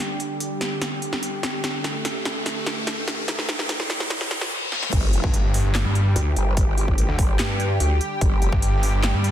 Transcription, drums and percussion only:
0.20 closed hi-hat medium
0.40 closed hi-hat medium
0.61 snare medium
0.61 closed hi-hat medium
0.82 snare medium
0.82 closed hi-hat medium
1.02 closed hi-hat soft
1.13 snare medium
1.23 closed hi-hat medium
1.43 snare medium
1.43 closed hi-hat medium
1.64 snare medium
1.64 closed hi-hat medium
1.84 snare medium
1.84 closed hi-hat soft
2.05 snare medium
2.05 closed hi-hat medium
2.25 snare medium
2.25 closed hi-hat medium
2.46 snare medium
2.46 closed hi-hat medium
2.66 snare medium
2.66 closed hi-hat soft
2.87 snare medium
2.87 closed hi-hat medium
3.08 snare medium
3.08 closed hi-hat medium
3.28 snare medium
3.28 closed hi-hat medium
3.39 snare medium
3.49 snare medium
3.49 closed hi-hat medium
3.59 snare medium
3.69 snare loud
3.69 closed hi-hat medium
3.80 snare medium
3.90 snare loud
3.90 closed hi-hat medium
4.00 snare medium
4.10 snare loud
4.10 closed hi-hat medium
4.21 snare medium
4.31 snare loud
4.31 closed hi-hat soft
4.41 snare medium
4.72 snare medium
4.83 snare medium
4.93 kick loud
4.93 closed hi-hat medium
4.93 crash loud
5.13 closed hi-hat medium
5.24 kick loud
5.34 closed hi-hat medium
5.54 open hi-hat medium
5.75 snare loud
5.75 clap medium
5.75 closed hi-hat medium
5.95 closed hi-hat medium
6.16 closed hi-hat medium
6.36 closed hi-hat medium
6.57 kick loud
6.57 closed hi-hat medium
6.78 closed hi-hat medium
6.88 kick medium
6.98 closed hi-hat medium
7.19 kick loud
7.19 open hi-hat medium
7.39 snare loud
7.39 clap medium
7.39 closed hi-hat medium
7.60 closed hi-hat medium
7.80 closed hi-hat medium
8.01 closed hi-hat medium
8.21 kick loud
8.21 closed hi-hat medium
8.42 closed hi-hat medium
8.52 kick loud
8.62 closed hi-hat medium
8.83 open hi-hat medium
9.04 snare loud
9.04 clap medium
9.04 closed hi-hat medium
9.24 closed hi-hat medium

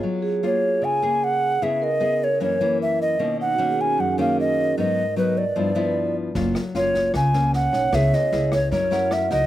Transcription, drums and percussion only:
6.35 kick medium
6.35 snare soft
6.55 cross-stick medium
6.55 snare soft
6.75 snare soft
6.94 kick soft
6.94 snare soft
7.14 kick medium
7.14 cross-stick medium
7.14 snare soft
7.33 snare soft
7.53 snare soft
7.73 kick soft
7.73 snare soft
7.93 kick medium
7.93 cross-stick medium
7.93 snare soft
8.13 snare soft
8.32 snare soft
8.52 kick soft
8.52 cross-stick medium
8.52 snare soft
8.72 kick medium
8.72 snare soft
8.92 snare soft
9.11 cross-stick medium
9.11 snare soft
9.31 kick soft
9.31 snare soft

